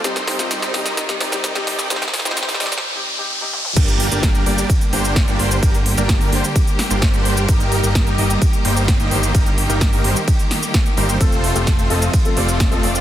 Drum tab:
CC |--------------------------------|--------------------------------|x-------------------------------|--------------------------------|
RD |--------------------------------|--------------------------------|x-------x-------x-------x-------|x-------x-------x-------x-------|
HH |x-x-o-x-x-x-o-x-x-x-o-x-x-x-o-x-|x-x-o-x-x-o-o-x-----------------|x-x-o-x-x-x-o-x-x-x-o-x-x-x-o-x-|x-x-o-x-x-o-o-x-x-x-o-x-x-x-o-x-|
SH |x-x---x-x-x---x-x-x---x-x-x---x-|x-x---x-x-x---x-----------------|x-x---x-x-x---x-x-x---x-x-x---x-|x-x---x-x-x---x-x-x---x-x-x---x-|
SD |o-o-o-o-o-o-o-o-o-o-o-o-o-o-o-o-|oooooooooooooooo----------------|--------o---------------o-------|--------o-----------o---o-------|
T1 |--------------------------------|----------------------------o---|--------------------------------|--------------------------------|
T2 |--------------------------------|------------------------------o-|--------------------------------|--------------------------------|
BD |--------------------------------|--------------------------------|o-------o-------o-------o-------|o-------o-------o-------o-------|

CC |--------------------------------|--------------------------------|--------------------------------|
RD |x-------x-------x-------x-------|x-------x-------x-------x-------|x-------x-------x-------x-------|
HH |x-x-o-x-x-x-o-x-x-x-o-x-x-x-o-x-|x-x-o-x-x-o-o-x-x-x-o-x-x-x-o-x-|x-x-o-x-x-x-o-x-x-x-o-x-x-x-o-x-|
SH |x-x---x-x-x---x-x-x---x-x-x---x-|x-x---x-x-x---x-x-x---x-x-x---x-|x-x---x-x-x---x-x-x---x-x-x---x-|
SD |--------o---------------o-------|--------o-----------o---o-------|--------o---------------o-------|
T1 |--------------------------------|--------------------------------|--------------------------------|
T2 |--------------------------------|--------------------------------|--------------------------------|
BD |o-------o-------o-------o-------|o-------o-------o-------o-------|o-------o-------o-------o-------|